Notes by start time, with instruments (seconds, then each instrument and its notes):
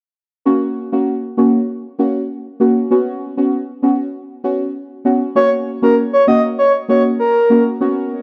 0.46 synth stab A#3 C#4 F#4
0.92 synth stab A#3 C#4 F#4
1.37 synth stab A#3 C#4 F#4
1.99 synth stab A#3 C#4 F#4
2.60 synth stab A#3 C#4 F#4
2.91 synth stab B3 C#4 F#4
3.37 synth stab B3 C#4 F#4
3.82 synth stab B3 C#4 F#4
4.44 synth stab B3 C#4 F#4
5.05 synth stab B3 C#4 F#4
5.35 synth stab A#3 C#4 F#4, soft synth lead C#5
5.82 synth stab A#3 C#4 F#4, soft synth lead A#4
6.13 soft synth lead C#5
6.27 synth stab A#3 C#4 F#4, soft synth lead D#5
6.59 soft synth lead C#5
6.88 synth stab A#3 C#4 F#4, soft synth lead C#5
7.19 soft synth lead A#4
7.50 synth stab A#3 C#4 F#4
7.81 synth stab B3 C#4 F#4